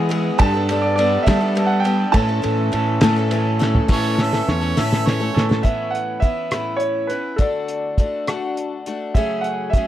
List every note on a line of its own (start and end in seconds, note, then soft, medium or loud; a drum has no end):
0.00 0.12 E2 medium
0.00 0.11 B2 medium
0.00 0.30 E3 medium
0.00 0.37 E3 medium
0.00 0.38 G#3 medium
0.00 0.38 B3 medium
0.00 0.39 G#4 medium
0.09 0.38 E3 medium
0.09 0.38 G#3 medium
0.09 0.38 B3 medium
0.09 0.39 G#4 medium
0.09 ride medium
0.38 1.16 G2 medium
0.38 0.53 G3 medium
0.38 0.54 B3 medium
0.38 0.54 D4 medium
0.38 2.10 G4 medium
0.38 0.53 A4 medium
0.38 2.11 A4 medium
0.38 0.84 A5 loud
0.38 kick loud
0.38 ride medium
0.42 2.12 B4 medium
0.54 0.70 B3 soft
0.54 0.69 D4 medium
0.54 0.69 A4 medium
0.69 0.97 G3 medium
0.69 0.98 B3 medium
0.69 0.98 D4 medium
0.69 0.99 A4 medium
0.69 ride medium
0.82 0.94 D5 medium
0.96 1.25 G3 medium
0.96 1.26 B3 medium
0.96 1.27 D4 medium
0.96 1.27 D5 medium
0.96 ride medium
1.00 1.27 A4 medium
1.23 1.41 G3 medium
1.23 1.70 E5 medium
1.27 2.04 G3 loud
1.27 1.41 B3 medium
1.27 1.40 D4 medium
1.27 1.39 A4 medium
1.27 kick medium
1.27 snare loud
1.27 ride loud
1.41 1.55 B3 soft
1.41 1.56 D4 medium
1.41 1.56 A4 medium
1.55 1.83 G3 medium
1.55 1.85 B3 medium
1.55 1.86 D4 medium
1.55 1.86 A4 medium
1.55 ride medium
1.66 1.83 F#5 medium
1.80 2.12 G5 medium
1.84 2.13 G3 medium
1.84 2.13 B3 medium
1.84 2.14 D4 medium
1.84 2.13 A4 medium
1.84 ride medium
2.12 2.28 A2 medium
2.12 2.40 A2 loud
2.12 2.28 E3 medium
2.12 2.28 A3 medium
2.12 2.28 C#4 medium
2.12 3.84 E4 medium
2.12 3.85 A4 medium
2.12 2.27 A4 medium
2.12 3.55 A5 medium
2.12 kick loud
2.12 ride medium
2.16 3.86 C#5 medium
2.29 2.42 A3 soft
2.29 2.42 C#4 soft
2.29 2.43 A4 medium
2.42 2.70 A2 medium
2.42 2.70 E3 medium
2.42 2.71 A3 medium
2.42 2.72 C#4 medium
2.42 2.72 A4 medium
2.42 ride medium
2.47 2.73 A3 medium
2.72 2.99 A2 medium
2.72 3.01 E3 medium
2.72 3.02 A3 medium
2.72 3.02 C#4 medium
2.72 3.02 A4 medium
2.72 ride medium
3.01 3.17 A2 medium
3.01 3.79 A2 medium
3.01 3.17 E3 medium
3.01 3.17 A3 medium
3.01 3.17 C#4 medium
3.01 3.15 A4 medium
3.01 snare loud
3.01 ride medium
3.16 3.31 A3 medium
3.16 3.31 C#4 medium
3.16 3.31 A4 medium
3.31 3.58 E3 medium
3.31 3.59 A3 medium
3.31 3.60 C#4 medium
3.31 3.60 A4 medium
3.31 ride medium
3.59 3.88 E3 medium
3.59 3.88 A3 medium
3.59 3.87 C#4 medium
3.59 3.89 A4 medium
3.59 snare medium
3.75 floor tom medium
3.88 4.18 A2 medium
3.88 4.40 A2 medium
3.88 4.17 E3 medium
3.88 4.18 A3 medium
3.88 4.18 C#4 medium
3.88 4.18 A4 medium
3.88 kick loud
3.88 snare medium
3.88 crash medium
3.92 4.19 C#5 loud
4.18 4.33 E3 medium
4.18 4.33 A3 medium
4.18 4.32 C#4 medium
4.18 4.31 A4 medium
4.18 4.52 E5 medium
4.18 snare medium
4.33 4.62 A3 soft
4.33 4.61 C#4 medium
4.33 4.60 A4 medium
4.33 snare medium
4.48 4.73 E2 medium
4.48 4.81 C#5 medium
4.48 snare medium
4.61 4.77 A3 soft
4.61 4.77 C#4 medium
4.61 4.76 A4 medium
4.77 5.06 A2 medium
4.77 5.29 A2 loud
4.77 5.05 E3 medium
4.77 5.06 A3 medium
4.77 5.06 C#4 medium
4.77 5.06 A4 medium
4.77 5.09 E5 medium
4.77 snare medium
4.93 snare medium
5.06 5.21 E3 medium
5.06 5.20 A3 medium
5.06 5.19 C#4 medium
5.06 5.19 A4 medium
5.06 5.49 C#5 medium
5.06 snare medium
5.20 5.50 A3 soft
5.20 5.49 C#4 medium
5.20 5.48 A4 medium
5.34 5.61 A2 medium
5.34 5.64 A2 medium
5.34 5.63 E3 medium
5.34 5.63 A3 medium
5.34 5.62 C#4 medium
5.34 5.62 A4 medium
5.34 snare medium
5.49 5.64 A3 soft
5.49 5.64 C#4 soft
5.49 5.64 A4 medium
5.49 snare medium
5.63 6.22 A2 medium
5.63 6.22 E3 medium
5.63 6.22 B3 medium
5.63 6.22 C#4 medium
5.63 6.23 E4 medium
5.63 5.93 E5 medium
5.63 kick medium
5.63 closed hi-hat medium
5.91 6.22 F#5 medium
5.95 closed hi-hat medium
6.20 6.51 E3 soft
6.20 6.50 B3 soft
6.20 6.51 C#4 soft
6.20 6.81 E5 medium
6.20 kick medium
6.20 closed hi-hat soft
6.24 6.50 E4 medium
6.51 7.10 A2 soft
6.51 7.10 E3 soft
6.51 7.10 B3 soft
6.51 7.10 C#4 medium
6.51 7.09 E4 medium
6.51 cross-stick medium
6.51 closed hi-hat medium
6.76 7.09 C#5 medium
6.76 closed hi-hat soft
7.07 7.39 C#4 soft
7.07 7.39 E4 soft
7.07 7.39 B4 medium
7.07 closed hi-hat soft
7.13 7.39 B3 soft
7.36 7.97 D3 medium
7.36 7.99 A3 medium
7.36 7.98 D4 medium
7.36 7.99 F#4 medium
7.36 8.51 A4 medium
7.36 kick medium
7.36 closed hi-hat medium
7.68 closed hi-hat medium
7.98 8.27 D3 soft
7.98 8.27 A3 soft
7.98 8.27 D4 soft
7.98 8.26 F#4 medium
7.98 kick medium
7.98 closed hi-hat medium
8.27 8.87 D3 soft
8.27 8.86 A3 soft
8.27 8.86 D4 medium
8.27 8.86 F#4 medium
8.27 cross-stick medium
8.27 closed hi-hat medium
8.57 closed hi-hat medium
8.86 9.16 A3 soft
8.86 9.16 D4 soft
8.86 9.16 F#4 soft
8.86 closed hi-hat soft
9.14 9.74 F#2 medium
9.14 9.74 C#3 medium
9.14 9.74 F#3 medium
9.14 9.75 A3 medium
9.14 9.75 C#4 medium
9.14 9.77 G#4 medium
9.14 9.45 E5 medium
9.14 kick medium
9.14 closed hi-hat medium
9.41 9.70 F#5 medium
9.41 closed hi-hat medium
9.70 9.87 E5 medium
9.70 kick medium
9.70 closed hi-hat medium
9.75 9.87 F#3 medium
9.75 9.87 A3 soft
9.75 9.87 C#4 medium
9.75 9.87 G#4 medium